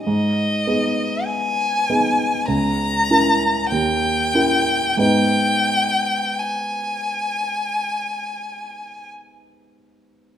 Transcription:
<<
  \new Staff \with { instrumentName = "Violin" } { \time 4/4 \key gis \minor \tempo 4 = 45 dis''4 gis''4 ais''4 g''4 | g''4 gis''2 r4 | }
  \new Staff \with { instrumentName = "Grand piano" } { \time 4/4 \key gis \minor gis,8 <b dis' gis'>4 <b dis' gis'>8 cis,8 <cis' e' ais'>8 dis,8 <cis' e' ais'>8 | <gis, b dis' b'>1 | }
>>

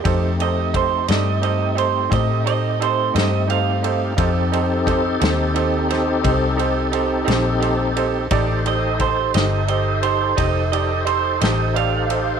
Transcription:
<<
  \new Staff \with { instrumentName = "Clean electric guitar" } { \time 12/8 \key f \major \tempo 4. = 58 r8 ees''8 c''8 ees''8 ees''8 c''8 ees''8 ees''8 c''8 ees''8 f''4~ | f''4 r1 r4 | r8 ees''8 c''8 ees''8 ees''8 c''8 ees''8 ees''8 c''8 ees''8 f''4 | }
  \new Staff \with { instrumentName = "Upright piano" } { \time 12/8 \key f \major <ees' g' a' c''>8 <ees' g' a' c''>8 <ees' g' a' c''>8 <ees' g' a' d''>8 <ees' g' a' c''>8 <ees' g' a' c''>8 <ees' g' a' c''>8 <ees' g' a' c''>8 <ees' g' a' c''>8 <ees' g' a' c''>8 <ees' g' a' c''>8 <ees' g' a' c''>8 | <ees' g' a' c''>8 <ees' g' a' c''>8 <ees' g' a' c''>8 <ees' g' a' c''>8 <ees' g' a' c''>8 <ees' g' a' c''>8 <ees' g' a' c''>8 <ees' g' a' c''>8 <ees' g' a' c''>8 <ees' g' a' c''>8 <ees' g' a' c''>8 <ees' g' a' c''>8 | <ees' g' a' d''>8 <ees' g' a' c''>8 <ees' g' a' c''>8 <ees' g' a' c''>8 <ees' g' a' c''>8 <ees' g' a' c''>8 <ees' g' a' c''>8 <ees' g' a' d''>8 <ees' g' a' c''>8 <ees' g' a' c''>8 <ees' g' a' d''>8 <ees' g' a' c''>8 | }
  \new Staff \with { instrumentName = "Tonewheel organ" } { \time 12/8 \key f \major <a c' ees' g'>1. | <c' ees' g' a'>1. | <ees' g' a' c''>1. | }
  \new Staff \with { instrumentName = "Fingered electric bass" } { \clef bass \time 12/8 \key f \major f,4. g,4. a,4. g,4. | f,4. ees,4. c,4. bes,,4. | a,,4. g,,4. f,,4. a,,4. | }
  \new DrumStaff \with { instrumentName = "Drums" } \drummode { \time 12/8 <bd cymr>8 cymr8 <bd cymr>8 <cymr sn>8 cymr8 cymr8 <bd cymr>8 cymr8 cymr8 <cymr sn>8 cymr8 cymr8 | <bd cymr>8 cymr8 <bd cymr>8 <cymr sn>8 cymr8 <cymr sn>8 <bd cymr>8 cymr8 cymr8 <cymr sn>8 cymr8 cymr8 | <bd cymr>8 cymr8 <bd cymr>8 <cymr sn>8 cymr8 cymr8 <bd cymr>8 cymr8 cymr8 <cymr sn>8 cymr8 cymr8 | }
>>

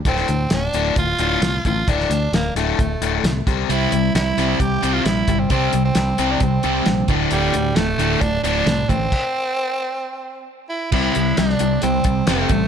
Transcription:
<<
  \new Staff \with { instrumentName = "Tenor saxophone" } { \time 4/4 \key c \mixolydian \tempo 4 = 133 c'4 d'4 f'4. f'8 | d'4 bes8 a2 r8 | e'4 e'4 g'8. f'16 e'8. c'16 | c'8. c'4 d'16 c'4. r8 |
g4 a4 d'8 d'4 c'8~ | c'2. r8 e'8 | e'4 d'4 c'4 a4 | }
  \new Staff \with { instrumentName = "Distorted electric guitar" } { \clef bass \time 4/4 \key c \mixolydian r1 | r1 | <c g c'>8 <c g>8 <c g>8 <c g c'>8 <c g>8 <c g c'>8 <c g>8 <c g>8 | <c g c'>8 <c g>8 <c g>8 <c g c'>8 <c g>8 <c g c'>8 <c g>8 <d, a, d>8 |
<d, a, d>8 <d, a,>8 <d, a,>8 <d, a, d>8 <d, a,>8 <d, a, d>8 <d, a,>8 <d, a,>8 | r1 | <c g c'>8 <c g>8 <c g>8 <c g>8 <c g>8 <c g>8 <c g c'>8 <c g>8 | }
  \new Staff \with { instrumentName = "Overdriven electric guitar" } { \clef bass \time 4/4 \key c \mixolydian <d, a, d>8 <d, a,>8 <d, a,>8 <d, a, d>8 <d, a,>8 <d, a, d>8 <d, a,>8 <d, a,>8 | <d, a, d>8 <d, a,>8 <d, a,>8 <d, a, d>8 <d, a,>8 <d, a, d>8 <d, a,>8 <c g c'>8 | <c g c'>8 <c g>8 <c g>8 <c g c'>8 <c g>8 <c g c'>8 <c g>8 <c g>8 | <c g c'>8 <c g>8 <c g>8 <c g c'>8 <c g>8 <c g c'>8 <c g>8 <d, a, d>8 |
<d, a, d>8 <d, a,>8 <d, a,>8 <d, a, d>8 <d, a,>8 <d, a, d>8 <d, a,>8 <d, a,>8 | r1 | <c g c'>8 <c g>8 <c g>8 <c g>8 <c g>8 <c g>8 <c g c'>8 <c g>8 | }
  \new Staff \with { instrumentName = "Fingered electric bass" } { \clef bass \time 4/4 \key c \mixolydian d,,8 d,8 d,,8 d,,8 d,,8 d,,8 c,8 a,,8 | d,,8 d,8 d,,8 d,,8 d,,8 d,,8 c,8 c,8 | c,8 c,8 c,8 c,8 c,8 c,8 bes,,8 g,,8 | c,8 c,8 c,8 c,8 c,8 c,8 bes,,8 d,,8 |
d,,8 d,8 d,,8 d,,8 d,,8 d,,8 c,8 a,,8 | r1 | c,8 c,8 c,8 c,8 c,8 c,8 f,,8 a,,8 | }
  \new DrumStaff \with { instrumentName = "Drums" } \drummode { \time 4/4 <hh bd>16 sn16 hh8 <hh sn>8 hh8 <hh bd>8 hh8 <hh sn>8 <hh bd>8 | <hh bd>16 sn16 <hh sn>8 <hh sn>8 <hh sn>8 <hh bd>8 hh8 <hh sn>8 <hh bd>8 | hh8 hh8 <hh sn>8 <hh sn>8 <hh bd>8 hh8 <hh sn>8 <hh bd>8 | <hh bd>8 hh8 <hh sn>8 hh8 <hh bd>8 hh8 <hh sn>8 <hh bd>8 |
hh8 hh8 <hh sn>8 hh8 <hh bd>8 hh8 <hh sn>8 <hh bd>8 | <cymc bd>4 r4 r4 r4 | <cymc bd>8 hh8 <hh sn>16 sn16 hh8 hh8 <hh bd>8 <hh sn>8 <hh bd>8 | }
>>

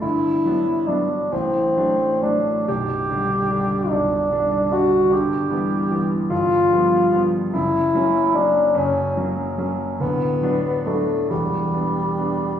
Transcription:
<<
  \new Staff \with { instrumentName = "Bassoon" } { \time 6/8 \key g \lydian \tempo 4. = 48 e'4 d'8 c'4 d'8 | g'4. d'4 fis'8 | \key e \dorian g'4. f'4 r8 | e'4 d'8 cis'8 r4 |
b4 a8 g4. | }
  \new Staff \with { instrumentName = "Grand piano" } { \clef bass \time 6/8 \key g \lydian <g,, g,>8 <fis b d'>8 <fis b d'>8 <a,, a,>8 <fis a d'>8 <fis a d'>8 | <b,,, b,,>8 <d g d'>8 <d g d'>8 <b,,, b,,>8 <d g d'>8 <d g d'>8 | \key e \dorian <g,, g,>8 <e g b>8 <e g b>8 <g,, g,>8 <f g b>8 <f g b>8 | <fis,, fis,>8 <fis ais cis'>8 <fis ais cis'>8 <fis,, fis,>8 <fis ais cis'>8 <fis ais cis'>8 |
<d,, d,>8 <fis b d'>8 <fis b d'>8 <e,, e,>8 <b d'>8 <b d'>8 | }
>>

